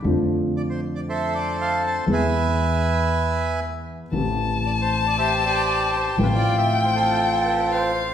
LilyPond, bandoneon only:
\new Staff \with { instrumentName = "Bandoneon" } { \time 4/4 \key f \lydian \tempo 4 = 118 << { r4 d''16 c''8 d''16 e''8 d''8 f''8 a''8 | gis''2. r4 | r4 d''16 c''8 d''16 e''8 d''4 c''8 | b'16 d''8 e''8 c''16 a'2 r8 | } \\ { r2 <a' c''>2 | <b' e''>2. r4 | r2 <g' c''>8 g'4. | f'4. <c' f'>2 r8 | } >> }